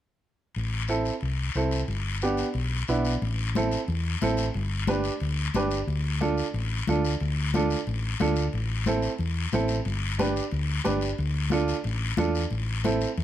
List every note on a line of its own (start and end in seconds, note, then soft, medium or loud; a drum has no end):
0.55 1.09 A1 medium
0.55 long guiro medium
0.88 1.12 C4 medium
0.88 1.13 E4 medium
0.88 1.13 A4 medium
0.88 short guiro medium
1.05 short guiro medium
1.21 1.49 C2 medium
1.21 long guiro medium
1.54 1.82 C2 medium
1.54 1.79 C4 medium
1.54 1.80 E4 medium
1.54 1.80 A4 medium
1.54 short guiro medium
1.71 short guiro medium
1.88 2.42 G1 medium
1.88 long guiro medium
2.21 2.46 B3 medium
2.21 2.46 D4 medium
2.21 2.46 G4 medium
2.21 short guiro medium
2.37 short guiro medium
2.54 2.82 B1 medium
2.54 long guiro medium
2.88 3.15 B1 medium
2.88 3.12 B3 medium
2.88 3.12 D4 medium
2.88 3.12 E4 medium
2.88 short guiro medium
3.05 short guiro medium
3.22 3.75 A1 medium
3.22 high conga soft
3.22 long guiro medium
3.55 3.79 C4 medium
3.55 3.79 E4 medium
3.55 3.79 A4 medium
3.55 high conga medium
3.55 short guiro medium
3.71 short guiro medium
3.88 4.15 E2 medium
3.88 high conga soft
3.88 long guiro medium
4.21 4.48 A1 loud
4.21 4.45 C4 medium
4.21 4.45 E4 medium
4.21 4.45 A4 medium
4.21 high conga medium
4.21 short guiro medium
4.37 short guiro medium
4.54 5.08 G1 loud
4.54 high conga soft
4.54 long guiro medium
4.87 5.11 D4 medium
4.87 5.11 G4 medium
4.87 5.12 B4 medium
4.87 high conga medium
4.87 short guiro medium
5.04 short guiro medium
5.20 5.48 D2 medium
5.20 high conga soft
5.20 long guiro medium
5.54 5.81 G1 loud
5.54 5.78 D4 medium
5.54 5.78 G4 medium
5.54 5.79 B4 medium
5.54 high conga medium
5.54 short guiro medium
5.71 short guiro medium
5.87 6.41 D2 loud
5.87 high conga soft
5.87 long guiro medium
6.20 6.44 D4 medium
6.20 6.44 F4 medium
6.20 6.44 A4 medium
6.20 high conga medium
6.20 short guiro medium
6.37 short guiro medium
6.54 6.81 A1 medium
6.54 high conga soft
6.54 long guiro medium
6.87 7.14 D2 medium
6.87 7.11 D4 medium
6.87 7.11 F4 medium
6.87 7.11 A4 medium
6.87 high conga medium
6.87 short guiro medium
7.04 short guiro medium
7.20 7.74 D2 loud
7.20 high conga soft
7.20 long guiro medium
7.54 7.77 D4 medium
7.54 7.77 F4 medium
7.54 7.78 A4 medium
7.54 high conga medium
7.54 short guiro medium
7.70 short guiro medium
7.87 8.14 A1 medium
7.87 high conga soft
7.87 long guiro medium
8.20 8.47 D2 loud
8.20 8.43 D4 medium
8.20 8.43 F4 medium
8.20 8.44 A4 medium
8.20 high conga medium
8.20 short guiro medium
8.36 short guiro medium
8.53 9.07 A1 medium
8.53 high conga soft
8.53 long guiro medium
8.86 9.10 C4 medium
8.86 9.10 E4 medium
8.86 9.10 A4 medium
8.86 high conga medium
8.86 short guiro medium
9.02 short guiro medium
9.18 9.46 E2 medium
9.18 high conga soft
9.18 long guiro medium
9.52 9.79 A1 loud
9.52 9.76 C4 medium
9.52 9.76 E4 medium
9.52 9.77 A4 medium
9.52 high conga medium
9.52 short guiro medium
9.68 short guiro medium
9.85 10.39 G1 loud
9.85 high conga soft
9.85 long guiro medium
10.19 10.42 D4 medium
10.19 10.42 G4 medium
10.19 10.43 B4 medium
10.19 high conga medium
10.19 short guiro medium
10.36 short guiro medium
10.51 10.79 D2 medium
10.51 high conga soft
10.51 long guiro medium
10.84 11.12 G1 loud
10.84 11.08 D4 medium
10.84 11.08 G4 medium
10.84 11.08 B4 medium
10.84 high conga medium
10.84 short guiro medium
11.01 short guiro medium
11.18 11.72 D2 loud
11.18 high conga soft
11.18 long guiro medium
11.50 11.75 D4 medium
11.50 11.75 F4 medium
11.50 11.75 A4 medium
11.50 high conga medium
11.50 short guiro medium
11.68 short guiro medium
11.84 12.12 A1 loud
11.84 high conga soft
11.84 long guiro medium
12.17 12.45 E2 loud
12.17 12.41 D4 medium
12.17 12.41 F4 medium
12.17 12.42 A4 medium
12.17 high conga medium
12.17 short guiro medium
12.35 short guiro medium
12.50 13.04 A1 medium
12.50 high conga soft
12.50 long guiro medium
12.84 13.08 C4 medium
12.84 13.08 E4 medium
12.84 13.08 A4 medium
12.84 high conga medium
12.84 short guiro medium
13.01 short guiro medium
13.17 13.24 E2 loud
13.17 high conga soft
13.17 long guiro medium